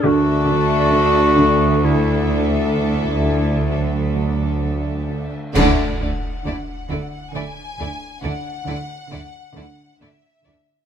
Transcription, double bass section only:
0.07 D2
5.55 D2
6.01 D2
6.46 D2
6.90 D2
7.35 D2
7.79 D2
8.23 D2
8.67 D2
9.12 D2
9.56 D2
10.01 D2
10.46 D2

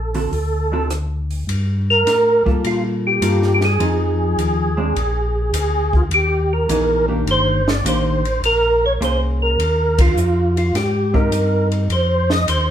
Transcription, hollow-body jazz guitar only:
0.14 D3 C4 F#4 A4
0.72 D3 C4 F#4 A4
2.46 G3 A#3 F4 A4
3.22 G3 A#3 F4 A4
3.80 F3 C4 D#4 G#4
4.77 G#3 C4 D4
6.69 E3 B3 D#4 G#4
7.08 D#3 A#3 D4 G4
7.85 D#3 A#3 D4 G4
9.01 A#3 C#4 G#4 C5
11.14 C4 D#4 G4

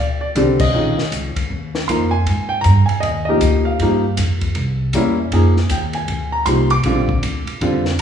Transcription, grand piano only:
Already playing: D5
0.21 D5
0.36 D3 G3 C4 G4
0.60 D#5
0.74 D#3 G#3 C#4 F4
1.88 F3 A#3 D#4 A#4 C6
2.11 G#5
2.49 G5
2.61 A#5
2.86 G#5
3.00 D#5
3.25 F3 A#3 D#4 D#5
3.30 G4
3.65 F5
3.81 F3 A#3 D#4 G4
4.94 G3 A#3 C#4 E4
5.33 F3 A#3 D#4 G#4
5.71 G5
5.95 G#5
6.32 A#5
6.46 F3 A#3 D#4 G4 C6
6.71 D6
6.85 D3 G3 C4 F4
7.62 D3 G3 C4 F4

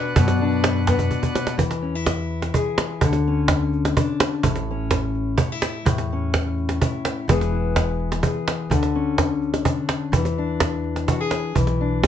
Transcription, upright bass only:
0.16 F#2
1.57 E2
3.01 D2
4.44 A1
5.85 E2
7.28 E1
8.70 D2
10.12 E2
11.55 B1

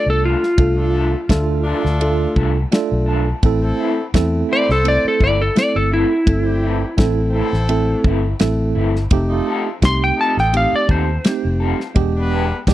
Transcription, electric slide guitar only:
0.10 A4
0.25 F4
4.53 D5
4.72 A4
4.88 D5
5.08 A4
5.24 D5
5.41 A4
5.59 D5
5.76 A4
5.93 E4
9.85 C6
10.04 G5
10.21 A5
10.40 G5
10.57 F5
10.76 D5
10.91 C5

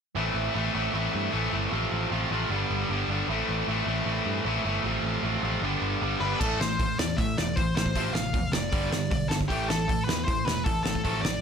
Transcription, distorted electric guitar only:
0.16 A2 E3 A3
0.55 A2 E3 A3
0.73 A2 E3 A3
0.93 A2 E3 A3
1.32 A2 E3 A3
1.52 A2 E3 A3
1.72 F2 C3 F3
2.11 F2 C3 F3
2.31 F2 C3 F3
2.51 G2 D3 G3
2.90 G2 D3 G3
3.10 G2 D3 G3
3.30 A2 E3 A3
3.69 A2 E3 A3
3.88 A2 E3 A3
4.07 A2 E3 A3
4.45 A2 E3 A3
4.64 A2 E3 A3
4.85 F2 C3 F3
5.24 F2 C3 F3
5.43 F2 C3 F3
5.63 G2 D3 G3
6.02 G2 D3 G3
6.23 G2 D3 G3
6.42 A2 E3 A3
6.61 A2 E3
6.80 A2 E3
7.00 A2 E3
7.18 A2 E3
7.38 A2 E3
7.56 A2 E3
7.76 A2 E3
7.96 F2 C3 F3
8.15 F2 C3
8.34 F2 C3
8.53 F2 C3
8.72 G2 D3 G3
8.91 G2 D3
9.11 G2 D3
9.30 G2 D3
9.48 A2 E3 A3
9.68 A2 E3
9.88 A2 E3
10.08 A2 E3
10.26 A2 E3
10.45 A2 E3
10.64 A2 E3
10.83 A2 E3
11.04 F2 C3 F3
11.24 F2 C3

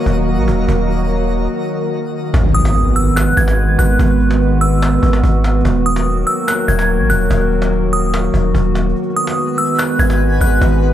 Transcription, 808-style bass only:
0.06 D#1
0.37 A#1
0.48 D#1
0.68 D#1
2.34 G#1
3.37 G#1
3.79 G#1
3.99 G#1
5.03 G#1
5.24 G#1
5.65 D#1
6.68 D#1
7.00 A#1
7.10 D#1
7.31 D#1
8.34 D#1
8.55 D#1
9.99 G#1
10.41 G#1
10.62 G#1

